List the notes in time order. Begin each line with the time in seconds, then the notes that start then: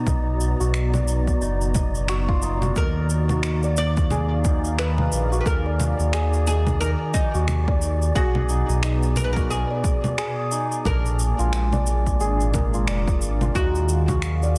Already playing: B2 B3 D#4 F#4 D5 A#5
0.07 B1 D#4, kick, low conga, shaker
0.41 shaker
0.60 B1 F#4, shaker
0.74 finger snap, shaker
0.94 D5, low conga, shaker
1.08 shaker
1.27 kick, shaker
1.41 F#1 D#4, shaker
1.61 shaker
1.75 D#5, kick, low conga, shaker
1.95 shaker
2.08 F#4, finger snap, shaker
2.29 F4, kick
2.42 D#4, shaker
2.62 F#4, low conga, shaker
2.76 D#2 D#3 D#4 A#4, kick, shaker
3.07 F5, shaker
3.29 F#4, low conga, shaker
3.43 finger snap, shaker
3.63 D5, shaker
3.77 D5, shaker
3.97 kick, shaker
4.10 G#4, low conga, shaker
4.45 D#4, kick, shaker
4.65 shaker
4.78 D#4 B4, finger snap, shaker
4.98 low conga
5.12 A#1, shaker
5.32 F#4, shaker
5.41 B4
5.46 D#2 A#4, kick, shaker
5.66 D5
5.80 low conga, shaker
5.99 D#2, shaker
6.13 G#4, finger snap, shaker
6.33 shaker
6.47 D#4 G#4, shaker
6.67 kick, low conga, shaker
6.81 D#4 A#4, shaker
7.14 D#4, kick, shaker
7.34 D#2 F#4, shaker
7.48 finger snap, low conga, shaker
7.68 D5, kick
7.82 shaker
8.02 shaker
8.15 B1 B2 F#4 G#4, kick, shaker
8.35 low conga
8.43 B3
8.49 D#4, shaker
8.69 B1, shaker
8.83 D#4, finger snap, shaker
9.03 shaker
9.16 A#4, low conga, shaker
9.24 B4
9.33 A#4, kick, shaker
9.37 F#4
9.50 G#4, shaker
9.70 D5
9.84 kick, shaker
10.04 low conga, shaker
10.18 G#4, finger snap, shaker
10.51 D#4, shaker
10.72 shaker
10.85 A#1 A#2 D4 A#4, kick, low conga, shaker
11.06 shaker
11.14 G#3 D4
11.19 shaker
11.39 A#1 F4, shaker
11.48 F5
11.53 finger snap, shaker
11.73 D5, low conga, shaker
11.87 shaker
12.07 kick, shaker
12.20 G#1 G#4, shaker
12.41 shaker
12.54 A#4, kick, low conga, shaker
12.74 F4, shaker
12.87 F1 D5, finger snap, shaker
13.08 kick, shaker
13.22 G#1, shaker
13.41 F4, low conga, shaker
13.55 D#2 D#3 D#4 F#4, kick, shaker
13.75 shaker
13.84 D#4
13.89 shaker
14.03 F#3
14.08 F#4, kick, low conga, shaker
14.22 finger snap, shaker
14.43 D5, shaker